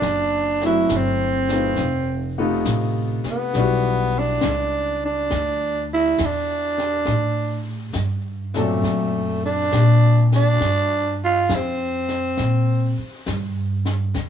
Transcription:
Already playing: tenor saxophone D4
0.02 upright bass F#1, brush sweep, snare
0.61 grand piano F#3 A3 C4 E4 F#4, snare
0.66 tenor saxophone E4
0.89 upright bass G1, snare, hi-hat pedal
0.96 tenor saxophone C4
1.49 grand piano A3 C4 D#4 F4 B4, snare
1.76 upright bass F1, brush sweep, snare
2.38 grand piano C3 A3 B3 D#4 F4
2.65 upright bass A1, snare, hi-hat pedal
3.24 muted upright bass stroke, snare
3.30 tenor saxophone B3
3.53 upright bass B1, grand piano G3 B3 D4, brush sweep, snare
3.58 grand piano E4 F#4
4.19 tenor saxophone D4
4.41 upright bass C#2, snare, hi-hat pedal
5.05 tenor saxophone D4
5.30 upright bass D2, brush sweep, snare
5.93 tenor saxophone E4
6.18 upright bass E2, snare, hi-hat pedal
6.25 tenor saxophone D4
6.78 snare
7.05 upright bass A2, brush sweep, snare
7.93 upright bass G2, snare, hi-hat pedal
8.54 grand piano A#2 F#3 C4 D4 A4, snare
8.58 tenor saxophone A3
8.82 upright bass F#2, brush sweep, snare
9.46 tenor saxophone D4
9.72 upright bass A#2, snare, hi-hat pedal
10.32 tenor saxophone D4, snare
10.60 upright bass G2, brush sweep, snare
11.24 tenor saxophone F4
11.49 upright bass F2, snare, hi-hat pedal
11.55 tenor saxophone C4
12.09 snare
12.37 upright bass A#2, brush sweep, snare
12.98 muted upright bass stroke
13.26 upright bass G2, snare, hi-hat pedal
13.85 snare
14.14 upright bass E2, brush sweep, snare

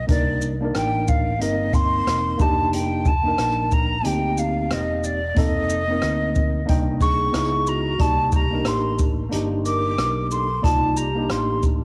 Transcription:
0.07 fretless electric bass C2, tine electric piano A#3 D4 D#4 A#4, flute D5, kick, closed hi-hat
0.41 shaker
0.61 tine electric piano A#3 D4 D#4
0.65 tine electric piano A#4
0.75 fretless electric bass A1, flute G5, cross-stick, closed hi-hat
1.08 flute F5, kick, shaker
1.39 fretless electric bass G1, tine electric piano A#3 C4 D#4 A#4, flute D#5, closed hi-hat
1.73 flute C6, kick, closed hi-hat, shaker
2.07 fretless electric bass E1, cross-stick, closed hi-hat
2.38 fretless electric bass F1, tine electric piano A#3 D4 D#4 G4, flute A5, kick, shaker
2.73 flute G5, closed hi-hat
3.06 flute A5, kick, shaker
3.24 tine electric piano A#3 D4 D#4
3.28 tine electric piano A#4
3.38 fretless electric bass A#1, cross-stick, closed hi-hat
3.72 flute A#5, kick, shaker
4.02 fretless electric bass D2, tine electric piano A#3 C4 D#4 G4, closed hi-hat
4.06 flute G5
4.38 flute F5, shaker
4.71 fretless electric bass E1, flute D#5, cross-stick, closed hi-hat
5.04 flute D5, shaker
5.35 fretless electric bass F1, tine electric piano A#3 C4 D#4 A4, flute D#5, kick, closed hi-hat
5.70 shaker
5.88 tine electric piano A#3 C4 D#4
5.92 tine electric piano A#4
6.02 fretless electric bass D2, cross-stick, closed hi-hat
6.35 kick, shaker
6.66 fretless electric bass C2, tine electric piano A#3 D4 D#4, kick, closed hi-hat
6.70 tine electric piano G5
7.01 vibraphone G#4, flute C#6, kick, closed hi-hat, shaker
7.32 fretless electric bass C#2, tine electric piano B3 D#4 E4 G#4, cross-stick, closed hi-hat
7.67 vibraphone F#4, flute A#5, shaker
7.98 fretless electric bass C2, tine electric piano A#3 D#4 D5, vibraphone D#4, flute A5, kick, closed hi-hat
8.02 tine electric piano G4
8.32 vibraphone G4, flute A#5, kick, shaker
8.51 tine electric piano A#3 D4 D#4 A#4
8.65 fretless electric bass A1, vibraphone G4, flute C6, cross-stick, closed hi-hat
8.99 kick, shaker
9.29 fretless electric bass G1, tine electric piano A#3 D4 D#4 G4, closed hi-hat
9.66 vibraphone A#4, flute D6, closed hi-hat, shaker
9.98 fretless electric bass B1, cross-stick, closed hi-hat
10.31 vibraphone A4, flute C6, shaker
10.62 fretless electric bass C2, tine electric piano A#3 D#4 F4 D5, vibraphone D#4, flute A5, kick, closed hi-hat
10.97 vibraphone G4, flute A#5, shaker
11.15 tine electric piano A#3 D4 D#4 G4
11.29 fretless electric bass A1, vibraphone G4, flute C6, cross-stick, closed hi-hat
11.63 kick, shaker

